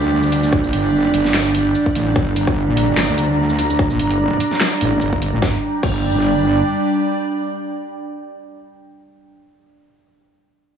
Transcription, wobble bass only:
Already playing: D2
0.64 A#1
0.73 G1
1.14 G1
1.95 A1
2.16 G1
2.47 G1
2.68 A#1
2.88 G1
3.09 D2
3.90 A#1
3.99 G1
4.81 A1
5.02 G1
5.33 A1
5.42 G1
5.83 G1

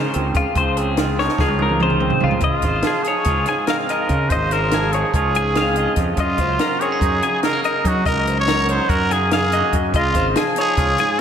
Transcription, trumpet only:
2.42 F4
3.03 G#4
3.67 A#4
3.88 A#4
4.29 C5
4.52 A#4
4.93 G#4
5.15 G#4
6.18 F4
6.80 G#4
7.43 A#4
7.64 A#4
7.87 F#4
8.07 A#4
8.40 C#5
8.70 C5
8.89 A#4
9.13 G#4
9.33 G#4
9.96 F4
10.60 G#4

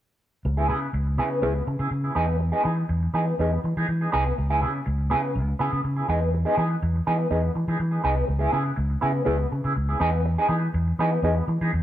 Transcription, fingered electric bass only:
0.45 C#2
0.69 C#3
0.93 C#2
1.18 C#3
1.42 C#2
1.67 C#3
1.80 C#3
1.91 C#3
2.16 E2
2.65 E3
2.89 E2
3.14 E3
3.39 E2
3.64 E3
3.77 E3
3.88 E3
4.14 C2
4.38 C#2
4.63 C#3
4.87 C#2
5.11 C#3
5.35 C#2
5.60 C#3
5.73 C#3
5.84 C#3
6.09 E2
6.57 E3
6.82 E2
7.07 E3
7.31 E2
7.55 E3
7.68 E3
7.80 E3
8.04 C2
8.29 C#2
8.53 C#3
8.77 C#2
9.03 C#3
9.26 C#2
9.52 C#3
9.65 C#3
9.76 C#2
10.00 E2
10.49 E3
10.74 E2
10.99 E3
11.22 E2
11.48 E3
11.61 E3
11.73 E2

